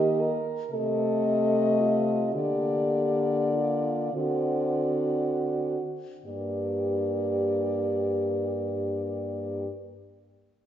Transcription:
0.00 0.42 D#3 medium
0.00 0.40 A#3 medium
0.00 0.22 G4 medium
0.00 0.40 D#5 medium
0.20 0.75 A#4 medium
0.71 2.35 C3 medium
0.71 2.30 A3 medium
0.71 1.81 A4 medium
0.71 2.29 D#5 medium
1.80 2.36 F4 medium
2.34 4.12 D3 medium
2.34 4.11 A#3 soft
2.34 3.51 G4 medium
2.34 4.11 D5 medium
3.52 4.16 F4 medium
4.13 5.77 D3 soft
4.13 5.78 C4 soft
4.13 6.10 F#4 medium
4.13 5.78 D5 medium
6.26 9.68 G2 soft
6.26 9.68 A#3 soft
6.26 9.69 G4 soft
6.26 9.69 D5 soft

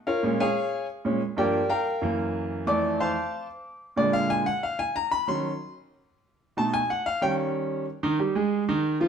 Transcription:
0.07 0.38 F4 medium
0.07 0.37 A#4 medium
0.07 0.38 C#5 medium
0.07 0.37 F5 medium
0.23 0.45 A#2 medium
0.23 0.45 G#3 medium
0.23 0.46 C#4 medium
0.40 0.86 G#4 medium
0.40 0.86 C#5 medium
0.40 0.86 F5 medium
0.40 0.86 G#5 medium
1.05 1.19 A#2 medium
1.05 1.20 G#3 soft
1.05 1.20 C#4 medium
1.37 1.59 G2 medium
1.37 1.59 F3 medium
1.37 1.59 A#3 medium
1.37 1.68 G4 medium
1.37 1.68 A#4 medium
1.37 1.68 D5 medium
1.37 1.68 G5 medium
1.70 2.15 A#4 medium
1.70 2.00 F5 medium
1.70 2.00 G5 medium
1.70 2.15 A#5 medium
2.01 2.64 F#2 medium
2.01 2.64 E3 medium
2.01 2.65 A#3 medium
2.67 3.13 F2 medium
2.67 3.14 E3 soft
2.67 3.14 A3 medium
2.67 2.98 D5 medium
2.67 2.98 D6 medium
3.00 3.46 C5 medium
3.00 3.46 F5 medium
3.00 3.46 A5 medium
3.00 3.46 C6 medium
3.96 4.43 A#2 medium
3.96 4.44 D3 soft
3.96 4.44 G#3 medium
3.96 4.13 D5 medium
4.13 4.29 F5 loud
4.30 4.46 G#5 loud
4.46 4.62 F#5 medium
4.63 4.79 F5 medium
4.79 4.95 G#5 medium
4.96 5.11 A#5 loud
5.11 5.27 B5 loud
5.27 5.49 D#3 medium
5.27 5.49 F#3 soft
5.27 5.50 C#4 medium
5.27 5.73 C6 medium
6.57 6.79 B2 medium
6.57 6.79 A3 medium
6.57 6.79 D#4 medium
6.57 6.73 A5 medium
6.74 6.89 G#5 loud
6.90 7.06 F#5 medium
7.06 7.22 F5 loud
7.21 7.84 D#3 medium
7.21 7.84 G3 medium
7.21 7.84 C#4 medium
7.21 7.32 G5 loud
8.03 8.17 D#3 medium
8.03 8.17 D#4 medium
8.19 8.33 G3 medium
8.19 8.33 G4 medium
8.35 8.62 G#3 medium
8.35 8.63 G#4 medium
8.69 8.95 D#3 medium
8.69 8.95 D#4 medium
9.00 9.08 F3 medium
9.00 9.08 F4 medium

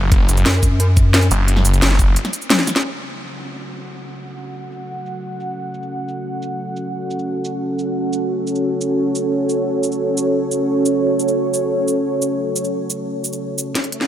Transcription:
0.00 0.10 F#1 loud
0.12 0.27 F#1 loud
0.12 kick loud
0.12 closed hi-hat loud
0.29 0.44 F#1 loud
0.29 closed hi-hat medium
0.29 shaker medium
0.37 closed hi-hat soft
0.37 shaker soft
0.46 1.30 F#2 loud
0.46 snare loud
0.46 closed hi-hat medium
0.63 kick medium
0.63 closed hi-hat medium
0.63 shaker medium
0.80 closed hi-hat loud
0.97 kick loud
0.97 closed hi-hat medium
0.97 shaker medium
1.14 snare loud
1.14 closed hi-hat loud
1.22 closed hi-hat soft
1.31 1.64 F#1 loud
1.31 closed hi-hat medium
1.31 shaker medium
1.48 closed hi-hat loud
1.57 snare soft
1.65 1.81 F#1 loud
1.65 closed hi-hat medium
1.65 shaker medium
1.74 closed hi-hat soft
1.74 shaker soft
1.82 2.16 F#1 loud
1.82 snare loud
1.82 closed hi-hat medium
1.91 snare soft
1.99 kick medium
1.99 closed hi-hat medium
1.99 shaker medium
2.16 closed hi-hat loud
2.25 snare soft
2.25 closed hi-hat soft
2.33 closed hi-hat medium
2.33 shaker medium
2.42 shaker soft
2.50 snare loud
2.50 closed hi-hat loud
2.50 high tom medium
2.59 snare medium
2.59 closed hi-hat soft
2.67 snare soft
2.67 closed hi-hat medium
2.67 shaker medium
2.76 snare medium
2.84 13.71 C#4 medium
2.84 13.71 F#4 medium
2.84 13.71 A4 medium
2.84 8.28 F#5 medium
3.01 shaker medium
3.10 shaker soft
3.36 shaker medium
3.70 shaker medium
4.04 shaker medium
4.38 shaker medium
4.46 shaker soft
4.72 shaker medium
5.06 shaker medium
5.40 shaker medium
5.74 shaker medium
5.83 shaker soft
6.08 shaker medium
6.42 shaker medium
6.76 shaker medium
7.11 shaker medium
7.19 shaker soft
7.45 shaker medium
7.79 shaker medium
8.13 shaker medium
8.30 13.73 C#5 medium
8.47 shaker medium
8.55 shaker soft
8.81 shaker medium
9.15 shaker medium
9.49 shaker medium
9.83 shaker medium
9.92 shaker soft
10.17 shaker medium
10.52 shaker medium
10.86 shaker medium
11.20 shaker medium
11.28 shaker soft
11.54 shaker medium
11.88 shaker medium
12.22 shaker medium
12.56 shaker medium
12.64 shaker soft
12.90 shaker medium
13.24 shaker medium
13.33 shaker soft
13.58 shaker medium
13.75 14.07 C#4 medium
13.75 14.07 F#4 medium
13.75 14.07 A4 medium
13.75 14.07 F#5 medium
13.75 kick medium
13.75 snare soft
13.75 closed hi-hat medium
13.75 riser medium
13.84 closed hi-hat soft
13.92 closed hi-hat medium
14.01 snare soft

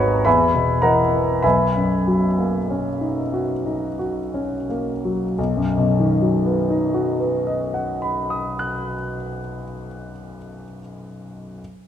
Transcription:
0.00 0.22 G#1 soft
0.00 0.28 D#2 soft
0.00 0.28 F#3 soft
0.00 0.28 B3 soft
0.00 0.28 D#4 soft
0.00 0.15 F#4 soft
0.00 0.28 G#4 soft
0.00 0.24 B4 soft
0.00 0.22 C#5 soft
0.00 0.28 D#5 medium
0.00 0.28 F#5 soft
0.00 0.26 G#5 medium
0.00 0.22 A#5 soft
0.00 0.25 B5 medium
0.00 0.25 C#6 medium
0.00 0.29 D#6 medium
0.00 0.28 F#6 medium
0.25 1.41 E2 soft
0.25 0.79 B4 soft
0.25 0.79 E5 soft
0.25 0.79 G#5 soft
0.25 0.83 B5 medium
0.54 1.01 B2 soft
0.82 1.31 E3 soft
0.82 1.40 A#4 soft
0.82 1.40 D#5 soft
0.82 1.40 F#5 soft
0.82 1.43 A#5 medium
1.13 1.44 B3 soft
1.43 5.34 B1 soft
1.43 4.65 B4 soft
1.43 4.65 E5 soft
1.43 4.65 G#5 soft
1.43 4.68 B5 medium
1.76 2.26 F#2 soft
2.07 2.57 F#3 soft
2.39 2.89 A#3 soft
2.70 3.21 C#4 soft
3.01 3.53 D#4 soft
3.34 3.86 F#4 soft
3.66 4.20 D#4 soft
3.99 4.55 F#4 soft
4.34 4.91 C#4 soft
4.69 5.25 A#3 soft
5.05 5.38 F#3 soft
5.38 8.56 B1 soft
5.57 8.74 F#2 soft
5.78 8.95 B2 soft
5.99 9.17 D#3 soft
6.22 9.39 F#3 soft
6.45 9.62 B3 soft
6.70 9.87 D#4 soft
6.94 10.11 F#4 soft
7.20 10.37 B4 soft
7.47 10.64 D#5 soft
7.74 10.79 F#5 soft
8.02 10.79 B5 soft
8.30 10.79 D#6 soft
8.59 10.79 F#6 soft

